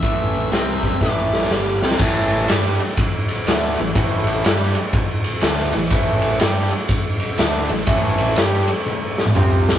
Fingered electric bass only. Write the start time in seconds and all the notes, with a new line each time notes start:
0.03 A1
0.52 C2
1.01 A1
1.51 G1
1.82 C2
1.99 A1
2.49 G2
3.47 D2
3.77 A1
3.95 A1
4.45 G2
5.42 D2
5.74 A1
5.91 A1
6.41 G2
7.39 D2
7.69 A1
7.87 A1
8.37 G2
9.36 C2